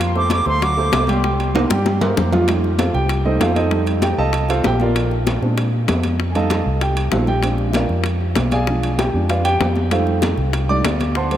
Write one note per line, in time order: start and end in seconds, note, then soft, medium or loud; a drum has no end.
0.00 0.40 F2 medium
0.00 high bongo medium
0.00 high timbale loud
0.15 0.41 A3 medium
0.15 0.41 A4 medium
0.15 0.41 C5 medium
0.15 0.31 D6 medium
0.15 high bongo soft
0.15 high conga soft
0.30 0.46 D6 medium
0.30 high bongo medium
0.30 high conga loud
0.30 high timbale medium
0.30 low timbale medium
0.46 0.89 D2 medium
0.46 0.59 A3 medium
0.46 0.59 A4 medium
0.46 0.59 C5 medium
0.46 0.65 C6 medium
0.46 high bongo soft
0.62 0.75 F#3 medium
0.62 0.75 F#4 medium
0.62 0.75 F#5 medium
0.62 1.09 D6 medium
0.62 high bongo medium
0.62 high conga soft
0.62 high timbale medium
0.77 1.02 A3 medium
0.77 1.03 A4 medium
0.77 1.03 C5 medium
0.77 high conga soft
0.92 1.65 C2 medium
0.92 high bongo medium
0.92 low bongo medium
0.92 high conga medium
0.92 high timbale medium
0.92 low timbale medium
1.07 1.21 G3 loud
1.07 1.21 G4 medium
1.07 1.21 G5 medium
1.07 high bongo soft
1.07 high conga medium
1.07 high timbale medium
1.23 1.49 G3 medium
1.23 1.49 G4 medium
1.23 1.49 G5 medium
1.23 high bongo medium
1.23 high conga soft
1.39 high bongo soft
1.39 high conga soft
1.39 high timbale medium
1.55 1.68 A#3 medium
1.55 1.68 A#4 medium
1.55 1.68 C5 medium
1.55 high bongo medium
1.55 high conga loud
1.55 high timbale medium
1.70 2.13 G2 loud
1.70 1.96 G3 medium
1.70 1.96 G4 medium
1.70 1.96 G5 medium
1.70 high bongo loud
1.70 high conga medium
1.86 high bongo loud
1.86 high conga medium
2.01 2.14 A#3 medium
2.01 2.14 A#4 medium
2.01 2.14 C5 medium
2.01 low bongo medium
2.01 low conga loud
2.01 low timbale loud
2.17 2.89 F2 medium
2.17 2.30 A#3 medium
2.17 2.30 A#4 medium
2.17 2.30 C5 medium
2.17 low bongo loud
2.17 low conga medium
2.32 2.45 F3 loud
2.32 2.45 F4 medium
2.32 2.45 F5 medium
2.32 low bongo medium
2.32 low conga medium
2.32 low timbale medium
2.47 2.68 G3 medium
2.47 2.68 A3 soft
2.47 2.68 D#4 medium
2.47 high bongo medium
2.47 high conga soft
2.47 high timbale medium
2.64 high bongo soft
2.64 high conga soft
2.78 2.94 F4 medium
2.78 2.94 A4 medium
2.78 2.94 C5 medium
2.78 2.93 F5 medium
2.78 high bongo medium
2.78 high conga loud
2.78 high timbale medium
2.78 low timbale medium
2.94 3.37 C2 loud
2.94 3.23 G4 medium
2.94 3.23 G5 medium
2.94 high bongo soft
3.09 high bongo medium
3.09 high conga soft
3.09 high timbale medium
3.24 3.39 G3 medium
3.24 3.39 A3 soft
3.24 3.40 D#4 medium
3.24 3.40 A4 medium
3.24 3.40 C5 medium
3.24 3.40 D#5 medium
3.24 high conga soft
3.40 4.12 F2 medium
3.40 3.56 F4 medium
3.40 3.55 A4 medium
3.40 3.55 C5 medium
3.40 3.56 F5 medium
3.40 high bongo medium
3.40 low bongo medium
3.40 high conga medium
3.40 high timbale medium
3.40 low timbale medium
3.56 3.70 D#4 medium
3.56 3.85 A4 medium
3.56 3.85 C5 medium
3.56 3.85 D#5 medium
3.56 high bongo soft
3.56 high conga medium
3.56 high timbale medium
3.70 4.15 G3 medium
3.70 4.15 A3 soft
3.70 4.15 D#4 medium
3.70 high bongo medium
3.70 high conga soft
3.86 high bongo soft
3.86 high conga soft
3.86 high timbale medium
4.02 4.18 G4 medium
4.02 4.18 G5 medium
4.02 high bongo medium
4.02 high conga loud
4.02 high timbale medium
4.02 low timbale medium
4.18 4.61 C2 medium
4.18 4.47 A4 medium
4.18 4.47 D#5 medium
4.18 4.47 F5 medium
4.18 4.47 A5 loud
4.33 high bongo medium
4.33 high conga soft
4.33 high timbale medium
4.49 4.65 F4 medium
4.49 4.65 A4 medium
4.49 4.64 C5 medium
4.49 4.64 F5 loud
4.49 high bongo soft
4.49 high conga soft
4.49 high timbale medium
4.64 5.37 A#1 medium
4.64 4.81 G4 medium
4.64 4.80 G5 loud
4.64 high bongo medium
4.64 low bongo medium
4.64 high conga medium
4.64 low timbale medium
4.80 5.10 F4 medium
4.80 5.10 A#4 medium
4.80 5.10 D5 medium
4.80 5.10 F5 medium
4.80 high bongo soft
4.80 high conga medium
4.96 high bongo medium
4.96 high conga soft
4.96 high timbale medium
5.11 high bongo soft
5.11 high conga soft
5.27 high bongo medium
5.27 high conga loud
5.27 high timbale medium
5.27 low timbale medium
5.42 5.85 A#2 loud
5.42 5.63 G#3 medium
5.42 5.63 C4 medium
5.42 5.63 D4 medium
5.42 high bongo soft
5.57 high bongo medium
5.57 high conga soft
5.57 high timbale medium
5.73 high conga soft
5.88 6.61 F2 medium
5.88 high bongo medium
5.88 low bongo medium
5.88 high conga medium
5.88 high timbale medium
5.88 low timbale medium
6.03 high bongo soft
6.03 high conga medium
6.03 high timbale medium
6.19 high bongo medium
6.19 high conga soft
6.31 6.55 G3 medium
6.31 6.33 G#5 medium
6.35 6.56 A3 soft
6.35 6.56 D#4 medium
6.35 6.79 A4 medium
6.35 6.79 D#5 medium
6.35 6.79 F5 medium
6.35 6.78 A5 medium
6.35 high bongo soft
6.35 high conga soft
6.35 high timbale medium
6.50 high bongo medium
6.50 high conga loud
6.50 high timbale medium
6.50 low timbale medium
6.66 7.09 C2 medium
6.81 7.11 G4 medium
6.81 7.11 G5 medium
6.81 high bongo medium
6.81 high conga soft
6.81 high timbale medium
6.97 high bongo soft
6.97 high conga soft
6.97 high timbale medium
7.12 7.84 A#1 medium
7.12 7.26 G3 soft
7.12 7.26 A3 soft
7.12 7.27 D#4 medium
7.12 7.28 F4 medium
7.12 7.28 A4 medium
7.12 7.28 C5 medium
7.12 7.28 F5 medium
7.12 high bongo medium
7.12 low bongo medium
7.12 high conga medium
7.12 low timbale medium
7.27 7.71 G4 medium
7.27 7.71 G5 medium
7.27 high bongo soft
7.27 high conga medium
7.43 7.87 G#3 medium
7.43 7.88 C4 soft
7.43 7.88 D4 medium
7.43 high bongo medium
7.43 high conga soft
7.43 high timbale medium
7.58 high bongo soft
7.58 high conga soft
7.71 7.73 E5 soft
7.71 high bongo medium
7.71 high timbale medium
7.71 low timbale medium
7.75 8.04 F4 medium
7.75 8.04 A#4 medium
7.75 8.04 D5 medium
7.75 8.04 F5 medium
7.75 high conga loud
7.89 8.33 F2 medium
7.89 high bongo soft
8.04 high bongo medium
8.04 high conga soft
8.04 high timbale medium
8.21 high conga soft
8.36 9.08 B1 medium
8.36 high bongo medium
8.36 low bongo medium
8.36 high conga medium
8.36 high timbale loud
8.36 low timbale medium
8.51 8.96 G#4 medium
8.51 8.96 D5 medium
8.51 8.95 F5 medium
8.51 8.95 G#5 loud
8.51 high bongo soft
8.51 high conga medium
8.51 high timbale medium
8.67 8.88 F3 medium
8.67 8.88 G#3 soft
8.67 8.88 D4 medium
8.67 high bongo medium
8.67 high conga soft
8.83 high bongo soft
8.83 high conga soft
8.83 high timbale medium
8.98 9.27 G4 medium
8.98 9.27 G5 medium
8.98 high bongo medium
8.98 high conga loud
8.98 high timbale medium
8.98 low timbale medium
9.13 9.57 F2 loud
9.13 9.28 F3 soft
9.13 9.28 G#3 soft
9.13 9.28 D4 medium
9.29 9.45 F4 medium
9.29 9.45 B4 medium
9.29 9.45 D5 medium
9.29 9.45 F5 medium
9.29 high bongo medium
9.29 high conga soft
9.29 high timbale medium
9.45 9.88 G4 medium
9.45 9.88 G5 loud
9.45 high bongo soft
9.45 high conga soft
9.45 high timbale medium
9.60 10.32 F2 medium
9.60 high bongo medium
9.60 low bongo medium
9.60 high conga medium
9.60 low timbale medium
9.76 high bongo soft
9.76 high conga medium
9.90 10.35 G3 medium
9.90 10.35 A3 medium
9.90 10.36 D#4 medium
9.90 10.21 F4 medium
9.90 10.20 A4 medium
9.90 10.21 C5 medium
9.90 10.20 F5 medium
9.90 high bongo medium
9.90 high conga soft
9.90 high timbale medium
10.07 high bongo soft
10.07 high conga soft
10.22 high bongo medium
10.22 high conga loud
10.22 high timbale medium
10.22 low timbale medium
10.37 10.81 C2 loud
10.37 high bongo soft
10.53 high bongo medium
10.53 high conga soft
10.53 high timbale medium
10.69 10.83 G3 medium
10.69 10.83 A3 soft
10.69 10.84 D#4 medium
10.69 11.13 D5 medium
10.69 11.12 D6 loud
10.69 high conga soft
10.84 11.37 D2 medium
10.84 high bongo medium
10.84 low bongo medium
10.84 high conga medium
10.84 high timbale medium
10.84 low timbale medium
11.00 high bongo soft
11.00 high conga medium
11.00 high timbale medium
11.15 11.37 C5 medium
11.15 11.37 F#5 medium
11.15 11.37 A5 medium
11.15 11.37 C6 medium
11.15 high bongo medium
11.15 high conga soft
11.31 11.37 F#3 medium
11.31 11.37 A3 medium
11.31 11.37 C4 medium
11.31 high bongo soft
11.31 high conga soft
11.31 high timbale medium